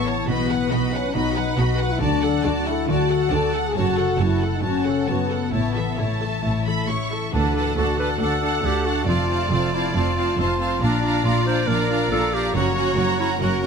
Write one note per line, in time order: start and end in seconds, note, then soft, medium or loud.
0.00 0.22 A1 medium
0.00 0.22 A2 medium
0.00 0.30 A2 soft
0.00 0.31 E3 soft
0.00 0.30 A3 soft
0.00 0.17 B3 medium
0.00 0.31 E4 soft
0.07 0.30 C#4 soft
0.07 0.28 C#5 soft
0.07 0.29 C#5 soft
0.07 0.29 A5 soft
0.28 0.65 B1 medium
0.28 1.15 B2 soft
0.28 0.65 B2 medium
0.28 0.93 B3 medium
0.28 0.49 F#4 soft
0.28 0.48 D#5 soft
0.28 0.49 B5 soft
0.48 1.36 F#3 soft
0.48 0.71 B4 soft
0.48 0.71 F#5 soft
0.48 0.72 F#5 soft
0.70 1.08 B1 medium
0.70 1.08 B2 medium
0.70 1.57 D#4 soft
0.70 0.93 F#4 soft
0.70 0.93 D#5 soft
0.70 0.94 B5 soft
0.92 1.79 B3 soft
0.92 1.15 C#4 medium
0.92 1.15 B4 soft
0.92 1.15 F#5 soft
0.92 1.16 F#5 soft
1.14 1.51 B1 medium
1.14 1.51 B2 medium
1.14 2.04 B2 soft
1.14 1.58 D#4 medium
1.14 1.35 F#4 soft
1.14 1.35 D#5 soft
1.14 1.35 B5 soft
1.35 5.27 F#3 soft
1.35 1.58 B4 soft
1.35 1.57 F#5 soft
1.35 1.59 F#5 soft
1.57 1.94 B1 medium
1.57 1.95 B2 medium
1.57 2.04 D#4 soft
1.57 1.90 F#4 medium
1.57 1.80 F#4 soft
1.57 1.79 D#5 soft
1.57 1.81 B5 soft
1.78 2.04 B3 soft
1.78 2.01 B4 soft
1.78 2.01 F#5 soft
1.92 2.02 E4 medium
2.01 2.38 D2 medium
2.01 2.89 D3 medium
2.01 2.38 D3 medium
2.01 2.66 D4 medium
2.01 2.22 F#4 soft
2.01 2.21 D5 soft
2.01 2.22 A5 soft
2.22 3.10 A3 soft
2.22 2.45 A4 soft
2.22 2.45 F#5 soft
2.44 2.82 D2 medium
2.44 2.82 D3 medium
2.44 3.32 F#4 soft
2.44 2.67 F#4 soft
2.44 2.67 D5 soft
2.44 2.67 A5 soft
2.66 3.53 D4 soft
2.66 2.89 E4 medium
2.66 2.89 A4 soft
2.66 2.89 F#5 soft
2.88 3.26 D2 medium
2.88 3.26 D3 medium
2.88 3.79 D3 soft
2.88 3.09 F#4 soft
2.88 3.33 F#4 medium
2.88 3.09 D5 soft
2.88 3.10 A5 soft
3.10 4.41 A3 soft
3.10 3.33 A4 soft
3.10 3.32 F#5 soft
3.10 3.33 F#5 soft
3.31 3.69 D2 medium
3.31 3.69 D3 medium
3.31 3.55 F#4 soft
3.31 5.55 F#4 soft
3.31 3.65 A4 medium
3.31 3.54 D5 soft
3.31 3.55 A5 soft
3.52 3.78 D4 soft
3.52 3.77 A4 soft
3.52 3.76 F#5 soft
3.52 3.77 F#5 soft
3.67 3.78 G#4 medium
3.75 4.13 F#1 medium
3.75 4.64 F#2 medium
3.75 4.13 F#2 medium
3.75 3.97 F#4 soft
3.75 4.20 F#4 medium
3.75 3.96 C#5 soft
3.75 3.96 A5 soft
3.97 4.87 C#3 soft
3.97 4.20 A4 soft
3.97 4.21 A4 soft
3.97 4.20 F#5 soft
4.19 4.58 F#1 medium
4.19 4.57 F#2 medium
4.19 5.08 C#4 soft
4.19 4.54 E4 medium
4.19 4.43 F#4 soft
4.19 4.42 C#5 soft
4.19 4.42 A5 soft
4.40 5.31 A3 soft
4.40 4.63 A4 soft
4.40 4.65 A4 soft
4.40 4.64 F#5 soft
4.56 4.66 D#4 medium
4.62 5.02 F#1 medium
4.62 5.01 F#2 medium
4.62 5.55 F#2 soft
4.62 4.85 F#4 soft
4.62 4.84 C#5 soft
4.62 4.84 A5 soft
4.67 5.09 C#4 medium
4.84 5.56 C#3 soft
4.84 5.08 A4 soft
4.84 5.07 F#5 soft
5.07 5.47 F#1 soft
5.07 5.46 F#2 soft
5.07 5.53 B3 medium
5.07 5.98 C#4 soft
5.07 5.31 F#4 soft
5.07 5.31 C#5 soft
5.07 5.30 A5 soft
5.30 6.20 A3 soft
5.30 5.53 A4 soft
5.30 5.53 F#5 soft
5.52 5.92 A1 soft
5.52 5.92 A2 soft
5.52 6.43 A2 soft
5.52 5.98 B3 medium
5.52 5.74 E4 soft
5.52 5.74 C#5 soft
5.52 5.75 A5 soft
5.75 6.65 E3 soft
5.75 5.98 A4 soft
5.75 5.98 E5 soft
5.75 5.99 E5 soft
5.98 6.37 A1 soft
5.98 6.37 A2 soft
5.98 7.11 A3 soft
5.98 6.88 C#4 soft
5.98 6.21 E4 soft
5.98 6.21 C#5 soft
5.98 6.63 A5 soft
6.21 7.10 A3 soft
6.21 6.44 A4 soft
6.21 6.44 E5 soft
6.43 6.81 A1 soft
6.43 6.81 A2 soft
6.43 7.35 A2 soft
6.43 6.65 E4 soft
6.43 6.64 C#5 soft
6.65 7.35 E3 soft
6.65 6.89 A4 soft
6.65 6.88 E5 soft
6.65 6.89 B5 soft
6.88 7.26 A1 soft
6.88 7.26 A2 soft
6.88 7.35 C#4 soft
6.88 7.11 E4 soft
6.88 7.11 C#5 soft
6.88 7.34 C#6 soft
7.10 8.20 A3 soft
7.10 7.32 A4 soft
7.10 7.33 E5 soft
7.32 7.70 D2 soft
7.32 7.70 D2 medium
7.32 7.95 D3 medium
7.32 9.10 D3 soft
7.32 10.79 A3 soft
7.32 7.54 D4 soft
7.32 7.74 D4 medium
7.32 9.05 F#4 soft
7.32 7.54 A4 soft
7.32 7.75 B4 medium
7.32 7.55 F#5 soft
7.32 7.55 A5 soft
7.55 7.76 D4 soft
7.55 8.42 D4 soft
7.55 7.76 A4 soft
7.55 7.76 F#5 soft
7.55 7.76 A5 soft
7.76 8.13 D2 soft
7.76 8.14 D2 medium
7.76 7.96 D4 soft
7.76 7.99 F#4 medium
7.76 7.96 A4 soft
7.76 8.64 A4 soft
7.76 8.21 A4 soft
7.76 7.98 F#5 soft
7.76 7.99 A5 soft
7.98 8.18 D4 soft
7.98 8.86 F#4 soft
7.98 8.18 A4 soft
7.98 8.09 B4 medium
7.98 8.20 F#5 soft
7.98 8.19 A5 soft
8.19 8.57 D2 medium
8.19 8.57 D2 soft
8.19 9.94 A3 soft
8.19 8.41 D4 soft
8.19 8.41 A4 soft
8.19 8.67 A4 medium
8.19 8.42 F#5 soft
8.19 9.08 F#5 medium
8.19 8.42 A5 soft
8.42 8.62 D4 soft
8.42 9.10 D4 soft
8.42 8.62 A4 soft
8.42 8.64 F#5 soft
8.42 8.64 A5 soft
8.63 9.00 D2 soft
8.63 9.01 D2 medium
8.63 8.85 D4 soft
8.63 8.88 G4 medium
8.63 8.84 A4 soft
8.63 9.52 A4 soft
8.63 8.85 F#5 soft
8.63 8.85 A5 soft
8.85 9.08 D4 soft
8.85 9.08 F#4 medium
8.85 9.10 F#4 soft
8.85 9.07 A4 soft
8.85 9.08 F#5 soft
8.85 9.07 A5 soft
9.07 9.44 F1 medium
9.07 9.44 F2 medium
9.07 11.68 F3 soft
9.07 9.28 C4 soft
9.07 9.28 F4 soft
9.07 9.76 F4 medium
9.07 12.55 F4 soft
9.07 10.36 D5 medium
9.07 9.29 F5 soft
9.07 9.28 A5 soft
9.29 9.50 C4 soft
9.29 10.16 C4 soft
9.29 9.51 F4 soft
9.29 9.50 F5 soft
9.29 9.51 A5 soft
9.51 9.88 F1 medium
9.51 9.88 F2 medium
9.51 9.72 C4 soft
9.51 9.72 F4 soft
9.51 10.38 A4 soft
9.51 9.72 F5 soft
9.51 9.72 A5 soft
9.73 9.93 C4 soft
9.73 9.96 E4 medium
9.73 9.92 F4 soft
9.73 10.60 F4 soft
9.73 9.94 F5 soft
9.73 9.93 A5 soft
9.93 10.31 F1 medium
9.93 10.32 F2 medium
9.93 10.84 A3 soft
9.93 10.15 C4 soft
9.93 10.15 F4 soft
9.93 10.39 F4 medium
9.93 10.16 F5 soft
9.93 10.16 A5 soft
10.16 10.37 C4 soft
10.16 10.84 C4 soft
10.16 10.37 F4 soft
10.16 10.38 F5 soft
10.16 10.38 A5 soft
10.38 10.75 F1 medium
10.38 10.75 F2 medium
10.38 10.58 C4 soft
10.38 10.58 F4 soft
10.38 10.82 F4 medium
10.38 10.84 A4 soft
10.38 10.82 C5 soft
10.38 10.58 F5 soft
10.38 10.58 A5 soft
10.59 10.81 C4 soft
10.59 10.81 F4 soft
10.59 11.25 F4 soft
10.59 10.81 F5 soft
10.59 10.81 A5 soft
10.81 11.18 A#1 medium
10.81 11.18 A#2 medium
10.81 12.56 A#2 medium
10.81 13.67 A#3 medium
10.81 11.01 D4 soft
10.81 11.24 D4 medium
10.81 11.01 F4 soft
10.81 12.50 D5 medium
10.81 11.03 F5 soft
10.81 11.03 A#5 soft
11.02 11.89 A#3 soft
11.02 11.23 D4 soft
11.02 11.23 F4 soft
11.02 11.25 F5 soft
11.02 11.25 A#5 soft
11.24 11.61 A#1 medium
11.24 11.62 A#2 medium
11.24 11.44 D4 soft
11.24 11.44 F4 soft
11.24 11.48 F4 medium
11.24 12.11 F4 soft
11.24 11.45 F5 soft
11.24 11.46 A#5 soft
11.45 11.67 D4 soft
11.45 12.32 D4 soft
11.45 11.67 F4 soft
11.45 11.69 C5 medium
11.45 11.68 F5 soft
11.45 11.68 A#5 soft
11.68 12.04 A#1 medium
11.68 12.05 A#2 medium
11.68 12.56 F3 soft
11.68 11.88 D4 soft
11.68 11.88 F4 soft
11.68 12.11 A#4 medium
11.68 11.89 F5 soft
11.68 11.89 A#5 soft
11.89 12.75 A#3 soft
11.89 12.10 D4 soft
11.89 12.10 F4 soft
11.89 12.11 F5 soft
11.89 12.10 A#5 soft
12.11 12.47 A#1 medium
12.11 12.47 A#2 medium
12.11 12.32 D4 soft
12.11 12.31 F4 soft
12.11 12.56 F4 soft
12.11 12.36 A4 medium
12.11 12.32 F5 soft
12.11 12.32 A#5 soft
12.32 12.56 D4 soft
12.32 12.54 D4 soft
12.32 12.54 F4 soft
12.32 12.55 G4 medium
12.32 12.54 F5 soft
12.32 12.54 A#5 soft
12.54 12.90 F#1 medium
12.54 12.90 F#2 medium
12.54 13.67 F#2 medium
12.54 12.74 C#4 medium
12.54 12.74 F#4 medium
12.54 13.67 F#4 medium
12.54 13.18 F#4 medium
12.54 13.41 C#5 medium
12.54 12.75 F#5 soft
12.54 12.75 A#5 soft
12.75 13.61 A#3 soft
12.75 12.95 C#4 soft
12.75 12.95 F#4 soft
12.75 12.97 F#5 soft
12.75 12.97 A#5 soft
12.96 13.34 F#1 medium
12.96 13.34 F#2 medium
12.96 13.17 C#4 soft
12.96 13.17 F#4 soft
12.96 13.67 F#4 soft
12.96 13.18 F#5 medium
12.96 13.18 A#5 soft
13.18 13.38 C#4 soft
13.18 13.67 C#4 soft
13.18 13.30 E4 medium
13.18 13.38 F#4 soft
13.18 13.39 F#5 soft
13.18 13.39 A#5 soft
13.40 13.67 F#1 medium
13.40 13.67 F#2 medium
13.40 13.67 C#3 soft
13.40 13.60 C#4 soft
13.40 13.61 F#4 soft
13.40 13.67 F#4 medium
13.40 13.67 A#4 medium
13.40 13.60 F#5 soft
13.40 13.60 A#5 medium
13.61 13.67 A#3 soft
13.61 13.67 C#4 soft
13.61 13.67 F#4 soft
13.61 13.67 F#5 soft
13.61 13.67 A#5 soft